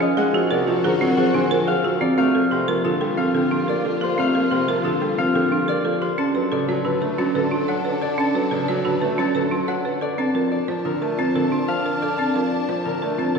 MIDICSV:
0, 0, Header, 1, 5, 480
1, 0, Start_track
1, 0, Tempo, 333333
1, 259, Time_signature, 6, 2, 24, 8
1, 19279, End_track
2, 0, Start_track
2, 0, Title_t, "Harp"
2, 0, Program_c, 0, 46
2, 0, Note_on_c, 0, 68, 84
2, 0, Note_on_c, 0, 70, 85
2, 0, Note_on_c, 0, 77, 104
2, 0, Note_on_c, 0, 80, 107
2, 0, Note_on_c, 0, 82, 115
2, 29, Note_on_c, 0, 75, 85
2, 258, Note_on_c, 0, 78, 105
2, 263, Note_off_c, 0, 82, 0
2, 278, Note_off_c, 0, 80, 0
2, 283, Note_off_c, 0, 68, 0
2, 283, Note_off_c, 0, 75, 0
2, 744, Note_on_c, 0, 74, 78
2, 1210, Note_off_c, 0, 70, 0
2, 1227, Note_on_c, 0, 70, 81
2, 1668, Note_off_c, 0, 78, 0
2, 1686, Note_on_c, 0, 78, 99
2, 1930, Note_on_c, 0, 68, 76
2, 2396, Note_off_c, 0, 77, 0
2, 2413, Note_on_c, 0, 77, 101
2, 2876, Note_off_c, 0, 74, 0
2, 2893, Note_on_c, 0, 74, 88
2, 3121, Note_off_c, 0, 77, 0
2, 3138, Note_on_c, 0, 77, 104
2, 3151, Note_off_c, 0, 78, 0
2, 3153, Note_off_c, 0, 68, 0
2, 3621, Note_on_c, 0, 72, 75
2, 4094, Note_on_c, 0, 69, 74
2, 4552, Note_off_c, 0, 77, 0
2, 4569, Note_on_c, 0, 77, 88
2, 4836, Note_on_c, 0, 67, 66
2, 5299, Note_off_c, 0, 74, 0
2, 5316, Note_on_c, 0, 74, 84
2, 5790, Note_off_c, 0, 72, 0
2, 5807, Note_on_c, 0, 72, 77
2, 6021, Note_off_c, 0, 77, 0
2, 6038, Note_on_c, 0, 77, 93
2, 6478, Note_off_c, 0, 72, 0
2, 6496, Note_on_c, 0, 72, 76
2, 6843, Note_off_c, 0, 70, 0
2, 6942, Note_off_c, 0, 69, 0
2, 6959, Note_on_c, 0, 69, 71
2, 7445, Note_off_c, 0, 77, 0
2, 7462, Note_on_c, 0, 77, 94
2, 7686, Note_off_c, 0, 67, 0
2, 7703, Note_on_c, 0, 67, 73
2, 8174, Note_off_c, 0, 74, 0
2, 8192, Note_on_c, 0, 74, 90
2, 8645, Note_off_c, 0, 72, 0
2, 8662, Note_on_c, 0, 72, 80
2, 8899, Note_on_c, 0, 81, 92
2, 8919, Note_off_c, 0, 77, 0
2, 8920, Note_off_c, 0, 67, 0
2, 8920, Note_off_c, 0, 72, 0
2, 9374, Note_off_c, 0, 74, 0
2, 9392, Note_on_c, 0, 74, 73
2, 9854, Note_on_c, 0, 71, 64
2, 10323, Note_off_c, 0, 81, 0
2, 10341, Note_on_c, 0, 81, 92
2, 10580, Note_off_c, 0, 69, 0
2, 10597, Note_on_c, 0, 69, 72
2, 11065, Note_on_c, 0, 78, 86
2, 11533, Note_off_c, 0, 74, 0
2, 11550, Note_on_c, 0, 74, 81
2, 11786, Note_off_c, 0, 81, 0
2, 11803, Note_on_c, 0, 81, 94
2, 12255, Note_off_c, 0, 74, 0
2, 12272, Note_on_c, 0, 74, 67
2, 12728, Note_off_c, 0, 71, 0
2, 12745, Note_on_c, 0, 71, 68
2, 13213, Note_off_c, 0, 81, 0
2, 13230, Note_on_c, 0, 81, 95
2, 13453, Note_off_c, 0, 69, 0
2, 13470, Note_on_c, 0, 69, 73
2, 13922, Note_off_c, 0, 78, 0
2, 13940, Note_on_c, 0, 78, 85
2, 14411, Note_off_c, 0, 74, 0
2, 14429, Note_on_c, 0, 74, 80
2, 14648, Note_off_c, 0, 81, 0
2, 14665, Note_on_c, 0, 81, 86
2, 14678, Note_off_c, 0, 78, 0
2, 14681, Note_off_c, 0, 71, 0
2, 15125, Note_off_c, 0, 74, 0
2, 15142, Note_on_c, 0, 74, 67
2, 15627, Note_on_c, 0, 70, 73
2, 16087, Note_off_c, 0, 81, 0
2, 16104, Note_on_c, 0, 81, 94
2, 16326, Note_off_c, 0, 69, 0
2, 16343, Note_on_c, 0, 69, 71
2, 16820, Note_on_c, 0, 77, 89
2, 17292, Note_off_c, 0, 74, 0
2, 17309, Note_on_c, 0, 74, 75
2, 17517, Note_off_c, 0, 81, 0
2, 17535, Note_on_c, 0, 81, 90
2, 18009, Note_off_c, 0, 74, 0
2, 18026, Note_on_c, 0, 74, 63
2, 18494, Note_off_c, 0, 70, 0
2, 18512, Note_on_c, 0, 70, 66
2, 18971, Note_off_c, 0, 81, 0
2, 18988, Note_on_c, 0, 81, 81
2, 19211, Note_off_c, 0, 69, 0
2, 19229, Note_on_c, 0, 69, 69
2, 19279, Note_off_c, 0, 69, 0
2, 19279, Note_off_c, 0, 70, 0
2, 19279, Note_off_c, 0, 74, 0
2, 19279, Note_off_c, 0, 77, 0
2, 19279, Note_off_c, 0, 81, 0
2, 19279, End_track
3, 0, Start_track
3, 0, Title_t, "Marimba"
3, 0, Program_c, 1, 12
3, 7, Note_on_c, 1, 61, 93
3, 247, Note_on_c, 1, 68, 86
3, 327, Note_off_c, 1, 61, 0
3, 495, Note_on_c, 1, 66, 84
3, 566, Note_off_c, 1, 68, 0
3, 728, Note_on_c, 1, 70, 95
3, 809, Note_off_c, 1, 66, 0
3, 973, Note_on_c, 1, 65, 75
3, 1047, Note_off_c, 1, 70, 0
3, 1215, Note_on_c, 1, 68, 88
3, 1289, Note_off_c, 1, 65, 0
3, 1455, Note_on_c, 1, 60, 99
3, 1529, Note_off_c, 1, 68, 0
3, 1696, Note_on_c, 1, 68, 70
3, 1769, Note_off_c, 1, 60, 0
3, 1935, Note_on_c, 1, 62, 80
3, 2010, Note_off_c, 1, 68, 0
3, 2175, Note_on_c, 1, 70, 110
3, 2249, Note_off_c, 1, 62, 0
3, 2411, Note_on_c, 1, 68, 77
3, 2489, Note_off_c, 1, 70, 0
3, 2656, Note_on_c, 1, 66, 77
3, 2728, Note_off_c, 1, 68, 0
3, 2893, Note_on_c, 1, 60, 91
3, 2970, Note_off_c, 1, 66, 0
3, 3117, Note_off_c, 1, 60, 0
3, 3134, Note_on_c, 1, 60, 88
3, 3382, Note_on_c, 1, 69, 82
3, 3449, Note_off_c, 1, 60, 0
3, 3618, Note_on_c, 1, 67, 77
3, 3692, Note_off_c, 1, 69, 0
3, 3860, Note_on_c, 1, 70, 91
3, 3930, Note_off_c, 1, 67, 0
3, 4101, Note_on_c, 1, 65, 84
3, 4171, Note_off_c, 1, 70, 0
3, 4334, Note_on_c, 1, 69, 78
3, 4411, Note_off_c, 1, 65, 0
3, 4572, Note_on_c, 1, 60, 81
3, 4649, Note_off_c, 1, 69, 0
3, 4819, Note_on_c, 1, 69, 79
3, 4888, Note_off_c, 1, 60, 0
3, 5059, Note_on_c, 1, 62, 80
3, 5131, Note_off_c, 1, 69, 0
3, 5299, Note_on_c, 1, 70, 80
3, 5371, Note_off_c, 1, 62, 0
3, 5543, Note_on_c, 1, 69, 65
3, 5611, Note_off_c, 1, 70, 0
3, 5778, Note_on_c, 1, 67, 77
3, 5852, Note_off_c, 1, 69, 0
3, 6017, Note_on_c, 1, 60, 95
3, 6090, Note_off_c, 1, 67, 0
3, 6261, Note_on_c, 1, 69, 69
3, 6330, Note_off_c, 1, 60, 0
3, 6501, Note_on_c, 1, 67, 75
3, 6571, Note_off_c, 1, 69, 0
3, 6745, Note_on_c, 1, 70, 84
3, 6811, Note_off_c, 1, 67, 0
3, 6982, Note_on_c, 1, 65, 78
3, 7053, Note_off_c, 1, 70, 0
3, 7226, Note_on_c, 1, 69, 66
3, 7292, Note_off_c, 1, 65, 0
3, 7467, Note_on_c, 1, 60, 84
3, 7533, Note_off_c, 1, 69, 0
3, 7708, Note_on_c, 1, 69, 74
3, 7773, Note_off_c, 1, 60, 0
3, 7947, Note_on_c, 1, 62, 83
3, 8014, Note_off_c, 1, 69, 0
3, 8180, Note_on_c, 1, 70, 78
3, 8254, Note_off_c, 1, 62, 0
3, 8421, Note_on_c, 1, 69, 67
3, 8491, Note_off_c, 1, 70, 0
3, 8664, Note_on_c, 1, 67, 73
3, 8732, Note_off_c, 1, 69, 0
3, 8899, Note_on_c, 1, 61, 92
3, 8973, Note_off_c, 1, 67, 0
3, 9141, Note_on_c, 1, 71, 76
3, 9211, Note_off_c, 1, 61, 0
3, 9384, Note_on_c, 1, 69, 72
3, 9451, Note_off_c, 1, 71, 0
3, 9629, Note_on_c, 1, 73, 86
3, 9692, Note_off_c, 1, 69, 0
3, 9861, Note_on_c, 1, 66, 78
3, 9934, Note_off_c, 1, 73, 0
3, 10105, Note_on_c, 1, 71, 65
3, 10171, Note_off_c, 1, 66, 0
3, 10345, Note_on_c, 1, 61, 89
3, 10413, Note_off_c, 1, 71, 0
3, 10587, Note_on_c, 1, 71, 80
3, 10653, Note_off_c, 1, 61, 0
3, 10821, Note_on_c, 1, 62, 79
3, 10893, Note_off_c, 1, 71, 0
3, 11063, Note_on_c, 1, 73, 86
3, 11131, Note_off_c, 1, 62, 0
3, 11302, Note_on_c, 1, 71, 73
3, 11372, Note_off_c, 1, 73, 0
3, 11542, Note_on_c, 1, 69, 70
3, 11612, Note_off_c, 1, 71, 0
3, 11779, Note_on_c, 1, 61, 96
3, 11852, Note_off_c, 1, 69, 0
3, 12026, Note_on_c, 1, 71, 72
3, 12091, Note_off_c, 1, 61, 0
3, 12257, Note_on_c, 1, 69, 71
3, 12333, Note_off_c, 1, 71, 0
3, 12504, Note_on_c, 1, 73, 95
3, 12570, Note_off_c, 1, 69, 0
3, 12742, Note_on_c, 1, 66, 77
3, 12813, Note_off_c, 1, 73, 0
3, 12982, Note_on_c, 1, 71, 74
3, 13052, Note_off_c, 1, 66, 0
3, 13220, Note_on_c, 1, 61, 92
3, 13292, Note_off_c, 1, 71, 0
3, 13460, Note_on_c, 1, 71, 75
3, 13531, Note_off_c, 1, 61, 0
3, 13699, Note_on_c, 1, 62, 81
3, 13771, Note_off_c, 1, 71, 0
3, 13940, Note_on_c, 1, 73, 88
3, 14011, Note_off_c, 1, 62, 0
3, 14185, Note_on_c, 1, 71, 73
3, 14251, Note_off_c, 1, 73, 0
3, 14420, Note_on_c, 1, 69, 72
3, 14493, Note_off_c, 1, 71, 0
3, 14661, Note_on_c, 1, 60, 86
3, 14731, Note_off_c, 1, 69, 0
3, 14903, Note_on_c, 1, 70, 74
3, 14971, Note_off_c, 1, 60, 0
3, 15212, Note_off_c, 1, 70, 0
3, 15382, Note_on_c, 1, 72, 87
3, 15624, Note_on_c, 1, 65, 75
3, 15692, Note_off_c, 1, 72, 0
3, 15867, Note_on_c, 1, 70, 70
3, 15933, Note_off_c, 1, 65, 0
3, 16109, Note_on_c, 1, 60, 88
3, 16173, Note_off_c, 1, 70, 0
3, 16352, Note_on_c, 1, 70, 70
3, 16414, Note_off_c, 1, 60, 0
3, 16586, Note_on_c, 1, 62, 77
3, 16655, Note_off_c, 1, 70, 0
3, 16828, Note_on_c, 1, 72, 76
3, 16893, Note_off_c, 1, 62, 0
3, 17073, Note_on_c, 1, 70, 60
3, 17134, Note_off_c, 1, 72, 0
3, 17314, Note_on_c, 1, 69, 68
3, 17375, Note_off_c, 1, 70, 0
3, 17554, Note_on_c, 1, 60, 82
3, 17616, Note_off_c, 1, 69, 0
3, 17792, Note_on_c, 1, 70, 71
3, 17856, Note_off_c, 1, 60, 0
3, 18095, Note_off_c, 1, 70, 0
3, 18270, Note_on_c, 1, 72, 80
3, 18511, Note_on_c, 1, 65, 73
3, 18575, Note_off_c, 1, 72, 0
3, 18752, Note_on_c, 1, 70, 66
3, 18815, Note_off_c, 1, 65, 0
3, 18985, Note_on_c, 1, 60, 70
3, 19055, Note_off_c, 1, 70, 0
3, 19227, Note_on_c, 1, 70, 69
3, 19279, Note_off_c, 1, 60, 0
3, 19279, Note_off_c, 1, 70, 0
3, 19279, End_track
4, 0, Start_track
4, 0, Title_t, "String section"
4, 0, Program_c, 2, 48
4, 245, Note_on_c, 2, 66, 86
4, 248, Note_on_c, 2, 72, 80
4, 2834, Note_off_c, 2, 66, 0
4, 2836, Note_off_c, 2, 72, 0
4, 3141, Note_on_c, 2, 58, 70
4, 3144, Note_on_c, 2, 65, 76
4, 8602, Note_off_c, 2, 58, 0
4, 8603, Note_off_c, 2, 65, 0
4, 8901, Note_on_c, 2, 62, 77
4, 8905, Note_on_c, 2, 69, 77
4, 14362, Note_off_c, 2, 62, 0
4, 14364, Note_off_c, 2, 69, 0
4, 14655, Note_on_c, 2, 62, 83
4, 14661, Note_on_c, 2, 81, 76
4, 19279, Note_off_c, 2, 62, 0
4, 19279, Note_off_c, 2, 81, 0
4, 19279, End_track
5, 0, Start_track
5, 0, Title_t, "Grand piano"
5, 0, Program_c, 3, 0
5, 243, Note_on_c, 3, 56, 94
5, 485, Note_on_c, 3, 53, 76
5, 565, Note_off_c, 3, 56, 0
5, 724, Note_on_c, 3, 48, 84
5, 806, Note_off_c, 3, 53, 0
5, 969, Note_on_c, 3, 53, 96
5, 1046, Note_off_c, 3, 48, 0
5, 1210, Note_on_c, 3, 50, 78
5, 1287, Note_off_c, 3, 53, 0
5, 1446, Note_on_c, 3, 54, 89
5, 1528, Note_off_c, 3, 50, 0
5, 1694, Note_on_c, 3, 53, 94
5, 1766, Note_off_c, 3, 54, 0
5, 1932, Note_on_c, 3, 50, 82
5, 2009, Note_off_c, 3, 53, 0
5, 2168, Note_on_c, 3, 53, 78
5, 2248, Note_off_c, 3, 50, 0
5, 2487, Note_off_c, 3, 53, 0
5, 2653, Note_on_c, 3, 53, 77
5, 2969, Note_off_c, 3, 53, 0
5, 3138, Note_on_c, 3, 57, 92
5, 3388, Note_on_c, 3, 53, 75
5, 3451, Note_off_c, 3, 57, 0
5, 3623, Note_on_c, 3, 48, 81
5, 3694, Note_off_c, 3, 53, 0
5, 3862, Note_on_c, 3, 53, 84
5, 3932, Note_off_c, 3, 48, 0
5, 4102, Note_on_c, 3, 50, 75
5, 4172, Note_off_c, 3, 53, 0
5, 4328, Note_on_c, 3, 55, 80
5, 4412, Note_off_c, 3, 50, 0
5, 4574, Note_on_c, 3, 53, 86
5, 4647, Note_off_c, 3, 55, 0
5, 4812, Note_on_c, 3, 50, 68
5, 4889, Note_off_c, 3, 53, 0
5, 5062, Note_on_c, 3, 53, 71
5, 5128, Note_off_c, 3, 50, 0
5, 5372, Note_off_c, 3, 53, 0
5, 5538, Note_on_c, 3, 53, 75
5, 5850, Note_off_c, 3, 53, 0
5, 6017, Note_on_c, 3, 57, 83
5, 6258, Note_on_c, 3, 53, 67
5, 6330, Note_off_c, 3, 57, 0
5, 6498, Note_on_c, 3, 48, 76
5, 6570, Note_off_c, 3, 53, 0
5, 6733, Note_on_c, 3, 53, 94
5, 6810, Note_off_c, 3, 48, 0
5, 6974, Note_on_c, 3, 50, 77
5, 7049, Note_off_c, 3, 53, 0
5, 7215, Note_on_c, 3, 55, 72
5, 7289, Note_off_c, 3, 50, 0
5, 7453, Note_on_c, 3, 53, 88
5, 7529, Note_off_c, 3, 55, 0
5, 7697, Note_on_c, 3, 50, 71
5, 7769, Note_off_c, 3, 53, 0
5, 7933, Note_on_c, 3, 53, 71
5, 8010, Note_off_c, 3, 50, 0
5, 8248, Note_off_c, 3, 53, 0
5, 8414, Note_on_c, 3, 53, 78
5, 8729, Note_off_c, 3, 53, 0
5, 9150, Note_on_c, 3, 54, 67
5, 9388, Note_on_c, 3, 49, 73
5, 9455, Note_off_c, 3, 54, 0
5, 9624, Note_on_c, 3, 54, 86
5, 9694, Note_off_c, 3, 49, 0
5, 9862, Note_on_c, 3, 50, 69
5, 9932, Note_off_c, 3, 54, 0
5, 10103, Note_on_c, 3, 57, 74
5, 10172, Note_off_c, 3, 50, 0
5, 10344, Note_on_c, 3, 54, 87
5, 10412, Note_off_c, 3, 57, 0
5, 10580, Note_on_c, 3, 50, 75
5, 10653, Note_off_c, 3, 54, 0
5, 10818, Note_on_c, 3, 54, 68
5, 10891, Note_off_c, 3, 50, 0
5, 11130, Note_off_c, 3, 54, 0
5, 12020, Note_on_c, 3, 54, 70
5, 12260, Note_on_c, 3, 49, 76
5, 12331, Note_off_c, 3, 54, 0
5, 12506, Note_on_c, 3, 54, 95
5, 12571, Note_off_c, 3, 49, 0
5, 12744, Note_on_c, 3, 50, 73
5, 12813, Note_off_c, 3, 54, 0
5, 12984, Note_on_c, 3, 57, 78
5, 13053, Note_off_c, 3, 50, 0
5, 13226, Note_on_c, 3, 54, 89
5, 13293, Note_off_c, 3, 57, 0
5, 13460, Note_on_c, 3, 50, 70
5, 13533, Note_off_c, 3, 54, 0
5, 13695, Note_on_c, 3, 54, 67
5, 13771, Note_off_c, 3, 50, 0
5, 14009, Note_off_c, 3, 54, 0
5, 14895, Note_on_c, 3, 53, 68
5, 15209, Note_off_c, 3, 53, 0
5, 15380, Note_on_c, 3, 53, 87
5, 15623, Note_on_c, 3, 50, 75
5, 15691, Note_off_c, 3, 53, 0
5, 15863, Note_on_c, 3, 57, 74
5, 15932, Note_off_c, 3, 50, 0
5, 16098, Note_on_c, 3, 53, 86
5, 16172, Note_off_c, 3, 57, 0
5, 16350, Note_on_c, 3, 50, 66
5, 16410, Note_off_c, 3, 53, 0
5, 16582, Note_on_c, 3, 53, 70
5, 16655, Note_off_c, 3, 50, 0
5, 16892, Note_off_c, 3, 53, 0
5, 17793, Note_on_c, 3, 53, 64
5, 18095, Note_off_c, 3, 53, 0
5, 18270, Note_on_c, 3, 53, 81
5, 18519, Note_on_c, 3, 50, 63
5, 18575, Note_off_c, 3, 53, 0
5, 18763, Note_on_c, 3, 57, 72
5, 18818, Note_off_c, 3, 50, 0
5, 18981, Note_on_c, 3, 53, 79
5, 19059, Note_off_c, 3, 57, 0
5, 19225, Note_on_c, 3, 50, 65
5, 19279, Note_off_c, 3, 50, 0
5, 19279, Note_off_c, 3, 53, 0
5, 19279, End_track
0, 0, End_of_file